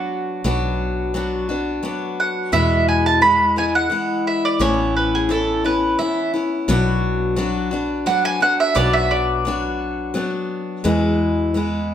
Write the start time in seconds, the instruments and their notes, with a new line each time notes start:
Already playing: steel-string acoustic guitar F#3 B3 D4 F#4, mandolin F#4
0.44 fretless electric bass B1, steel-string acoustic guitar B2 F#3 B3 D4 F#4
1.14 steel-string acoustic guitar F#3 B3 D4 F#4
1.49 steel-string acoustic guitar B3 D4 F#4
1.83 steel-string acoustic guitar F#3 B3 D4 F#4
2.20 mandolin F#5
2.52 steel-string acoustic guitar E2 B2 E3 G#3 B3 E4, fretless electric bass E2, mandolin E5
2.89 mandolin G#5
3.06 mandolin A5
3.21 steel-string acoustic guitar E3 G#3 B3 E4, mandolin B5
3.56 steel-string acoustic guitar E3 G#3 B3 E4, mandolin G#5
3.75 mandolin F#5
3.90 steel-string acoustic guitar E3 G#3 B3 E4
4.27 mandolin E5
4.45 mandolin D5
4.59 fretless electric bass A1, steel-string acoustic guitar A2 E3 B3 C#4 E4, mandolin C#5
4.96 mandolin B4
5.15 mandolin G#4
5.29 steel-string acoustic guitar E3 B3 C#4 E4, mandolin A4
5.64 steel-string acoustic guitar B3 C#4 E4, mandolin B4
5.99 steel-string acoustic guitar E3 B3 C#4 E4, mandolin E5
6.34 steel-string acoustic guitar B3 C#4 E4
6.68 fretless electric bass B1, steel-string acoustic guitar B2 F#3 B3 D4 F#4
7.36 steel-string acoustic guitar F#3 B3 D4 F#4
7.71 steel-string acoustic guitar B3 D4 F#4
8.06 steel-string acoustic guitar F#3 B3 D4 F#4, mandolin F#5
8.25 mandolin G#5
8.40 steel-string acoustic guitar B3 D4 F#4, mandolin F#5
8.60 mandolin E5
8.75 fretless electric bass B1, steel-string acoustic guitar B2 F#3 B3 D4 F#4, mandolin D5
8.93 mandolin E5
9.11 mandolin D5
9.45 steel-string acoustic guitar F#3 B3 D4 F#4
10.14 steel-string acoustic guitar F#3 B3 D4 F#4
10.84 steel-string acoustic guitar E2 B2 E3 G#3 B3 E4, fretless electric bass E2
11.54 steel-string acoustic guitar E3 G#3 B3 E4